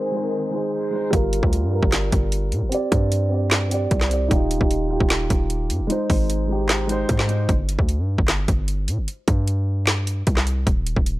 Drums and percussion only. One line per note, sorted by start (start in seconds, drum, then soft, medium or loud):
1.13 kick loud
1.13 closed hi-hat medium
1.33 closed hi-hat medium
1.43 kick medium
1.53 closed hi-hat medium
1.83 kick medium
1.92 snare loud
1.92 clap medium
1.92 closed hi-hat medium
2.12 kick loud
2.12 closed hi-hat medium
2.32 closed hi-hat medium
2.52 closed hi-hat medium
2.72 closed hi-hat medium
2.92 kick loud
2.92 closed hi-hat medium
3.12 closed hi-hat medium
3.51 snare loud
3.51 clap medium
3.51 closed hi-hat medium
3.71 closed hi-hat medium
3.91 kick medium
3.91 closed hi-hat medium
4.01 snare medium
4.01 clap medium
4.11 closed hi-hat medium
4.31 kick loud
4.31 closed hi-hat medium
4.51 closed hi-hat medium
4.61 kick medium
4.71 closed hi-hat medium
5.00 kick medium
5.10 snare loud
5.10 clap medium
5.10 closed hi-hat medium
5.30 kick loud
5.30 closed hi-hat medium
5.50 closed hi-hat medium
5.70 closed hi-hat medium
5.90 closed hi-hat medium
6.10 kick loud
6.10 open hi-hat medium
6.30 closed hi-hat medium
6.69 snare loud
6.69 clap medium
6.69 closed hi-hat medium
6.89 closed hi-hat medium
7.09 kick medium
7.09 closed hi-hat medium
7.19 snare medium
7.19 clap medium
7.29 closed hi-hat medium
7.49 kick loud
7.49 closed hi-hat medium
7.69 closed hi-hat medium
7.79 kick medium
7.89 closed hi-hat medium
8.18 kick medium
8.28 snare loud
8.28 clap medium
8.28 closed hi-hat medium
8.48 kick loud
8.48 closed hi-hat medium
8.68 closed hi-hat medium
8.88 closed hi-hat medium
9.08 closed hi-hat medium
9.28 kick loud
9.28 closed hi-hat medium
9.48 closed hi-hat medium
9.87 snare loud
9.87 clap medium
9.87 closed hi-hat medium
10.07 closed hi-hat medium
10.27 kick medium
10.27 closed hi-hat medium
10.37 snare medium
10.37 clap medium
10.47 closed hi-hat medium
10.67 kick loud
10.67 closed hi-hat medium
10.87 closed hi-hat medium
10.96 kick medium
11.06 closed hi-hat medium